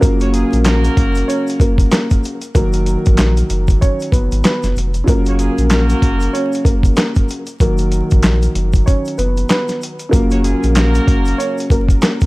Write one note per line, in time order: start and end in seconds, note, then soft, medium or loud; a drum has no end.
0.00 0.44 F#1 loud
0.00 2.35 C#3 medium
0.00 2.36 F#3 medium
0.00 2.37 A#3 loud
0.00 1.24 A#3 medium
0.00 2.36 F4 medium
0.00 1.24 A#4 loud
0.00 kick loud
0.00 closed hi-hat loud
0.00 shaker medium
0.20 0.31 F#4 medium
0.20 0.31 A#4 medium
0.20 0.31 C#5 medium
0.20 closed hi-hat medium
0.20 shaker medium
0.33 0.59 C#4 medium
0.33 0.59 F4 medium
0.33 0.59 G#4 medium
0.33 closed hi-hat medium
0.33 shaker medium
0.53 0.89 A#1 medium
0.53 closed hi-hat medium
0.53 shaker soft
0.65 1.56 A#3 loud
0.65 1.56 F#4 loud
0.65 1.56 A#4 loud
0.65 snare loud
0.65 clap medium
0.65 closed hi-hat loud
0.65 shaker medium
0.84 closed hi-hat medium
0.84 shaker medium
0.97 1.23 F#1 medium
0.97 kick loud
0.97 closed hi-hat medium
1.15 closed hi-hat medium
1.15 shaker medium
1.28 1.57 C#4 medium
1.28 1.56 C#5 medium
1.28 closed hi-hat medium
1.28 shaker medium
1.47 closed hi-hat medium
1.47 shaker medium
1.60 1.86 F#1 medium
1.60 1.89 A#3 medium
1.60 1.89 A#4 medium
1.60 kick loud
1.60 closed hi-hat medium
1.60 shaker medium
1.78 kick loud
1.78 closed hi-hat medium
1.78 shaker medium
1.91 2.21 A#3 medium
1.91 2.20 A#4 medium
1.91 snare loud
1.91 clap loud
1.91 closed hi-hat medium
1.91 shaker medium
2.10 kick medium
2.10 closed hi-hat medium
2.10 shaker medium
2.24 closed hi-hat medium
2.24 shaker soft
2.42 closed hi-hat medium
2.42 shaker medium
2.55 2.96 F#1 loud
2.55 4.90 D#3 medium
2.55 4.90 F#3 medium
2.55 3.77 A#3 medium
2.55 3.77 A#4 loud
2.55 kick loud
2.55 closed hi-hat medium
2.55 shaker medium
2.73 closed hi-hat medium
2.73 shaker medium
2.86 closed hi-hat medium
2.86 shaker medium
3.06 3.43 A#1 loud
3.06 kick loud
3.06 closed hi-hat medium
3.06 shaker medium
3.17 snare loud
3.17 clap medium
3.17 closed hi-hat loud
3.17 shaker medium
3.37 closed hi-hat medium
3.37 shaker medium
3.50 3.76 F#1 medium
3.50 closed hi-hat medium
3.50 shaker medium
3.68 kick loud
3.68 closed hi-hat medium
3.68 shaker medium
3.81 4.10 C#4 medium
3.81 4.10 C#5 medium
3.81 kick loud
3.81 closed hi-hat medium
3.81 shaker medium
4.00 closed hi-hat medium
4.00 shaker soft
4.12 4.28 F#1 medium
4.12 4.41 B3 medium
4.12 4.41 B4 medium
4.12 kick loud
4.12 closed hi-hat medium
4.12 shaker medium
4.32 4.42 G#1 medium
4.32 closed hi-hat medium
4.32 shaker medium
4.44 4.74 B3 medium
4.44 4.73 B4 loud
4.44 snare loud
4.44 clap loud
4.44 closed hi-hat medium
4.44 shaker medium
4.63 4.74 F#1 medium
4.63 snare soft
4.63 closed hi-hat medium
4.63 shaker medium
4.76 5.02 F1 medium
4.76 closed hi-hat medium
4.76 shaker soft
4.94 closed hi-hat medium
4.94 shaker medium
5.04 5.49 F#1 loud
5.04 7.40 C#3 medium
5.04 7.41 F#3 medium
5.04 7.42 A#3 loud
5.04 7.41 F4 medium
5.04 kick loud
5.04 shaker medium
5.08 6.31 A#3 medium
5.08 6.30 A#4 loud
5.08 closed hi-hat loud
5.25 5.37 F#4 medium
5.25 5.37 A#4 medium
5.25 5.37 C#5 medium
5.25 closed hi-hat medium
5.25 shaker soft
5.39 5.64 C#4 medium
5.39 5.64 F4 medium
5.39 5.64 G#4 medium
5.39 closed hi-hat medium
5.39 shaker medium
5.58 5.94 A#1 medium
5.58 closed hi-hat medium
5.58 shaker soft
5.70 6.62 A#3 loud
5.70 6.62 F#4 loud
5.70 6.62 A#4 loud
5.70 snare loud
5.70 clap medium
5.70 closed hi-hat loud
5.70 shaker medium
5.90 closed hi-hat medium
5.90 shaker medium
6.02 6.28 F#1 medium
6.02 kick loud
6.02 closed hi-hat medium
6.20 closed hi-hat medium
6.20 shaker medium
6.33 6.62 C#4 medium
6.33 6.62 C#5 medium
6.33 closed hi-hat medium
6.33 shaker medium
6.53 closed hi-hat medium
6.53 shaker medium
6.65 6.91 F#1 medium
6.65 6.94 A#3 medium
6.65 6.93 A#4 medium
6.65 kick loud
6.65 closed hi-hat medium
6.65 shaker medium
6.83 kick loud
6.83 closed hi-hat medium
6.83 shaker medium
6.96 7.26 A#3 medium
6.96 7.25 A#4 medium
6.96 snare loud
6.96 clap loud
6.96 closed hi-hat medium
6.96 shaker medium
7.15 kick medium
7.15 closed hi-hat medium
7.15 shaker medium
7.29 closed hi-hat medium
7.29 shaker soft
7.46 closed hi-hat medium
7.46 shaker medium
7.60 8.02 F#1 loud
7.60 9.95 D#3 medium
7.60 9.95 F#3 medium
7.60 8.84 A#3 medium
7.60 8.83 A#4 loud
7.60 kick loud
7.60 closed hi-hat loud
7.60 shaker medium
7.78 closed hi-hat medium
7.78 shaker medium
7.92 closed hi-hat medium
7.92 shaker medium
8.11 8.48 A#1 medium
8.11 kick loud
8.11 closed hi-hat medium
8.11 shaker soft
8.22 snare loud
8.22 clap medium
8.22 closed hi-hat loud
8.22 shaker medium
8.42 closed hi-hat medium
8.42 shaker medium
8.55 8.81 F#1 loud
8.55 closed hi-hat medium
8.73 kick loud
8.73 closed hi-hat medium
8.73 shaker medium
8.86 9.15 C#4 medium
8.86 9.15 C#5 medium
8.86 kick loud
8.86 closed hi-hat medium
8.86 shaker medium
9.05 closed hi-hat medium
9.05 shaker soft
9.18 9.44 F#1 medium
9.18 9.47 B3 medium
9.18 9.46 B4 medium
9.18 closed hi-hat medium
9.18 shaker medium
9.37 closed hi-hat medium
9.37 shaker medium
9.49 9.79 B3 medium
9.49 9.78 B4 medium
9.49 snare loud
9.49 clap loud
9.49 closed hi-hat medium
9.49 shaker medium
9.68 snare soft
9.68 closed hi-hat medium
9.68 shaker medium
9.82 closed hi-hat medium
9.82 shaker soft
9.99 closed hi-hat medium
9.99 shaker medium
10.09 10.54 F#1 loud
10.09 12.26 C#3 medium
10.09 12.26 F#3 medium
10.09 11.35 A#3 medium
10.09 12.26 A#3 loud
10.09 12.26 F4 medium
10.09 11.34 A#4 loud
10.09 kick loud
10.09 shaker medium
10.13 closed hi-hat loud
10.30 10.42 F#4 medium
10.30 10.42 A#4 medium
10.30 10.42 C#5 medium
10.30 closed hi-hat medium
10.30 shaker medium
10.44 10.69 C#4 medium
10.44 10.69 F4 medium
10.44 10.69 G#4 medium
10.44 closed hi-hat medium
10.44 shaker medium
10.63 11.00 A#1 medium
10.63 closed hi-hat medium
10.63 shaker soft
10.75 11.66 A#3 loud
10.75 11.66 F#4 loud
10.75 11.66 A#4 loud
10.75 snare loud
10.75 clap medium
10.75 closed hi-hat loud
10.75 shaker medium
10.95 closed hi-hat medium
10.95 shaker medium
11.08 11.33 F#1 medium
11.08 kick loud
11.08 closed hi-hat medium
11.25 closed hi-hat medium
11.25 shaker medium
11.38 11.67 C#4 medium
11.38 11.67 C#5 medium
11.38 closed hi-hat medium
11.38 shaker medium
11.58 closed hi-hat medium
11.58 shaker soft
11.70 11.96 F#1 medium
11.70 12.00 A#3 medium
11.70 11.99 A#4 medium
11.70 kick loud
11.70 closed hi-hat medium
11.70 shaker medium
11.89 kick loud
11.89 closed hi-hat medium
11.89 shaker medium
12.02 12.26 A#3 medium
12.02 12.26 A#4 medium
12.02 snare loud
12.02 clap loud
12.02 closed hi-hat medium
12.02 shaker medium
12.21 kick medium
12.21 closed hi-hat medium
12.21 shaker medium